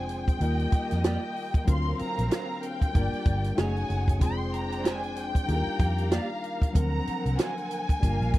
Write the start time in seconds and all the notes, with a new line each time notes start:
Already playing: F1 F3 G#3 C4 D4 F4 G#4 C5 G5 G#5
0.09 G5, closed hi-hat
0.28 kick, closed hi-hat
0.39 D#2 D#3 G3 A#3 D#4 F4 G4 A#4 D#5, closed hi-hat
0.59 closed hi-hat
0.72 muted fingered electric bass stroke, kick, closed hi-hat
0.91 F2, snare, closed hi-hat
1.04 A#3 F4 G4 D5 G5, snare, closed hi-hat
1.36 open hi-hat
1.54 kick, closed hi-hat
1.64 D2 D3 F#3 C4 D4 F4 A#4 F5, kick, closed hi-hat
1.69 A#4 C6
1.99 A#5, muted fingered electric bass stroke, closed hi-hat
2.18 A#1, closed hi-hat
2.31 D4 F#4 C5 F5 A#5, snare, closed hi-hat
2.63 G5, closed hi-hat
2.82 kick, closed hi-hat
2.93 G1 G3 A#3 D4 F4 G4 A#4 D5, kick, closed hi-hat
3.13 closed hi-hat
3.25 G1, kick, closed hi-hat
3.44 snare, closed hi-hat
3.55 F#1 F#3 A3 C#4 D#4 F#4 G#4 C#5 F#5, snare, closed hi-hat
3.60 G#5
3.77 closed hi-hat
3.90 F#1, closed hi-hat
4.08 kick, closed hi-hat
4.19 F1 F3 G#3 C4 D4 F4 C5 G5, kick, closed hi-hat
4.23 G#4 C6
4.54 A#5, closed hi-hat
4.72 closed hi-hat
4.84 G#3 D4 G4 C5 G#5, snare, closed hi-hat
5.03 closed hi-hat
5.16 G5, snare, closed hi-hat
5.35 kick, closed hi-hat
5.45 D#2 D#3 G3 A#3 D4 D#4 F4 G4 G#4 D5 F5 A#5, closed hi-hat
5.56 A#4
5.67 muted fingered electric bass stroke
5.79 F2, kick, closed hi-hat
5.98 closed hi-hat
6.11 A#3 F4 G4 D5 F5, snare, closed hi-hat
6.44 closed hi-hat
6.62 kick, closed hi-hat
6.73 D2 D3 F3 F#3 C4 D4 A#4 F#5, kick, closed hi-hat
6.77 A#5
7.07 muted fingered electric bass stroke, closed hi-hat
7.25 C2, closed hi-hat
7.38 D4 F#4 C5 F5 G#5, snare, closed hi-hat
7.58 closed hi-hat
7.71 closed hi-hat
7.89 kick, closed hi-hat
8.00 G1 G3 A#3 D4 F4 A#4 F5, kick, closed hi-hat
8.04 A#4
8.20 A#1, closed hi-hat
8.34 G1, kick, closed hi-hat